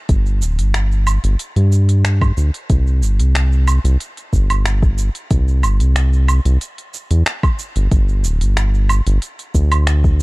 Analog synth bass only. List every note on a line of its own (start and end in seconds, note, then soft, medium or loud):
0.09 0.43 G1 loud
0.42 0.60 D1 medium
0.59 1.19 G1 medium
1.24 1.36 G1 medium
1.56 2.32 G2 medium
2.37 2.51 D2 medium
2.70 3.04 C2 loud
3.02 3.21 G1 medium
3.19 3.79 C2 medium
3.84 3.97 C2 medium
4.33 5.10 G1 loud
5.31 5.65 C2 medium
5.63 5.82 G1 medium
5.80 6.40 C2 medium
6.45 6.58 C2 medium
7.11 7.23 E2 medium
7.76 7.89 G1 medium
7.92 8.26 G1 loud
8.24 8.43 D1 medium
8.41 9.01 G1 medium
9.07 9.19 G1 medium
9.55 10.23 D2 loud